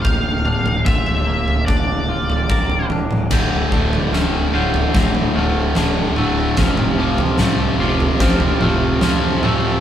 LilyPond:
<<
  \new Staff \with { instrumentName = "Glockenspiel" } { \time 4/4 \key d \minor \tempo 4 = 74 g'''8 f'''8 f''''8 d'''8 d'''8 f'''8 d'''4 | g'''4 f'''8 g'''4 f'''4 e'''8 | f'''8 d'''4 d'''8 f'''8 f'''4 e'''8 | }
  \new Staff \with { instrumentName = "Lead electric guitar" } { \time 4/4 \key d \minor f''4 e''4 d''4. r8 | r1 | r1 | }
  \new Staff \with { instrumentName = "Clean electric guitar" } { \time 4/4 \key d \minor bes,8 d'8 f'8 bes8 d'8 f'8 bes'8 d'8 | d,8 d8 a8 f'8 c'8 a8 d8 a8 | f,8 f8 a8 f'8 c'8 a8 f8 a8 | }
  \new Staff \with { instrumentName = "Overdriven electric guitar" } { \clef bass \time 4/4 \key d \minor r1 | <d, a, d>8 <d, a, d>8 <d, a, d>8 <d, a, d>8 <d, a, d>8 <d, a, d>8 <d, a, d>8 <d, a, d>8 | <f, c f>8 <f, c f>8 <f, c f>8 <f, c f>8 <f, c f>8 <f, c f>8 <f, c f>8 <f, c f>8 | }
  \new Staff \with { instrumentName = "Fingered electric bass" } { \clef bass \time 4/4 \key d \minor d,,1 | d,,8 d,,8 d,,8 d,,8 d,,8 d,,8 d,,8 d,,8 | f,,4 c,8 f,,8 f,,8 f,,8 f,4 | }
  \new DrumStaff \with { instrumentName = "Drums" } \drummode { \time 4/4 <bd tomfh>8 toml16 tomfh16 bd16 tomfh8 tomfh16 <bd tomfh>8. tomfh16 bd16 tomfh16 tomfh16 toml16 | <cymc bd sn tomfh>8 bd16 tomfh16 sn8. tomfh16 <bd sn>16 tomfh8. <sn tomfh>8 toml8 | <bd sn tomfh>16 toml8 tomfh16 <sn toml>8. tomfh16 <bd sn>16 tomfh16 toml8 <sn tomfh>8 toml8 | }
>>